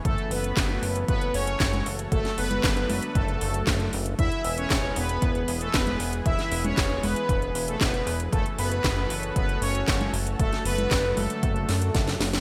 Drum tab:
HH |xxoxx-oxxxoxxxox|xxoxxxoxxxoxxxox|xxoxx-oxxxoxxxox|xxoxx-oxxxoxxxox|
CP |----x-------x---|----x-------x---|----x-------x---|----x-------x---|
SD |----o-------o---|-o--o-------o---|----o-------o---|-o--o-------o---|
CG |-------------o--|---o--o---------|-------------o--|---o--o---------|
BD |o---o---o---o---|o---o---o---o---|o---o---o---o---|o---o---o---o---|

HH |xxoxx-oxxxoxxxox|xxoxx-oxxxoxxxox|
CP |----x-------x---|----x-----------|
SD |----o-------o---|-o--o-----o-oooo|
CG |-------------o--|---o--o---------|
BD |o---o---o---o---|o---o---o---o---|